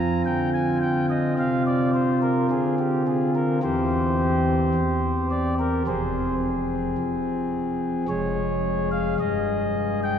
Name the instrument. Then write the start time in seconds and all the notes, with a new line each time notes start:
pipe organ
Already playing: F2 F3 C4 F4
0.00 A#5
0.26 D3 G5
0.54 G#5
0.82 G5
1.10 D#5
1.39 C3 F5
1.67 D5
1.94 C5
2.22 A#4
2.51 D3 G#4
2.79 G4
3.07 G#4
3.35 A#4
3.63 E2 E3 C4 G4 C5
4.75 E2
5.30 D5
5.59 A#4
5.87 F1 F2 C4 G#4 C5
6.98 F3
8.08 F1 F2 G#3 G#4 C#5
8.92 F5
9.20 G2 D#5
10.04 G5